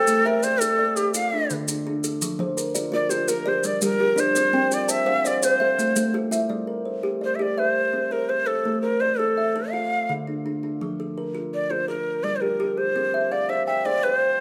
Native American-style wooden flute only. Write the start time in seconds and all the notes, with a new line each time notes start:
Already playing: A4
0.26 A#4
0.44 C5
0.60 A4
0.96 G4
1.15 F5
2.94 D5
3.10 C5
3.28 A#4
3.48 C5
3.66 D5
3.84 A#4
4.20 C5
4.74 D5
4.90 E5
5.27 D5
5.44 C5
7.24 C5
7.35 E5
7.42 D5
7.59 C5
8.12 A#4
8.29 C5
8.47 A4
8.82 A#4
9.00 C5
9.18 A4
9.71 F5
11.54 D5
11.71 C5
11.89 A#4
12.23 D5
12.36 C5
12.41 A#4
12.78 C5
13.32 D5
13.49 E5
13.67 E5
13.85 D5
14.03 B4
14.14 C5